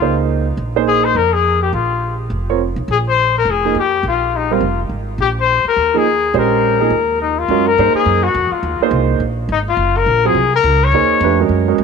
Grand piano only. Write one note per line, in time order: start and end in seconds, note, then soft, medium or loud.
0.02 0.44 A#3 medium
0.02 0.44 D#4 medium
0.02 0.44 G#4 soft
0.02 0.44 C5 medium
0.76 1.14 A#3 medium
0.76 1.14 D#4 medium
0.76 1.14 G#4 medium
0.76 1.14 C5 medium
2.49 2.59 C4 medium
2.49 2.59 F4 medium
2.49 2.59 A#4 medium
2.49 2.59 C#5 medium
3.65 3.74 F3 medium
3.65 3.75 A#3 medium
3.65 3.75 D#4 medium
3.65 3.75 G#4 medium
4.51 4.61 G3 medium
4.51 4.61 C4 medium
4.51 4.61 F4 medium
4.51 4.61 A#4 medium
5.94 6.04 F3 medium
5.94 6.04 A#3 medium
5.94 6.05 D#4 medium
5.94 6.05 G#4 medium
6.34 6.77 G#3 medium
6.34 6.77 C#4 medium
6.34 6.77 G4 medium
6.34 6.77 C5 medium
6.80 6.91 F3 medium
6.80 6.91 A#3 medium
6.80 6.91 D#4 medium
6.80 6.91 G#4 medium
7.50 7.65 G#3 medium
7.50 7.65 C#4 medium
7.50 7.65 F#4 medium
7.50 7.65 A#4 medium
7.78 8.21 A#3 medium
7.78 8.21 D#4 medium
7.78 8.21 G#4 medium
7.78 8.21 C5 medium
8.82 9.20 A#3 medium
8.82 9.20 D#4 medium
8.82 9.20 G#4 medium
8.82 9.20 C5 medium
10.25 10.35 F#3 medium
10.25 10.35 C4 medium
10.25 10.35 F4 medium
10.25 10.35 G#4 medium
10.94 11.21 A#3 medium
10.94 11.21 D#4 medium
10.94 11.21 G#4 medium
10.94 11.21 C5 medium
11.23 11.38 A3 medium
11.23 11.38 D4 medium
11.23 11.38 G4 medium
11.23 11.38 B4 medium
11.40 11.64 G#3 medium
11.40 11.65 C#4 medium
11.40 11.65 F#4 medium
11.40 11.65 A#4 medium
11.68 11.78 G#3 medium
11.68 11.78 C#4 medium
11.68 11.78 F#4 medium
11.68 11.78 A#4 medium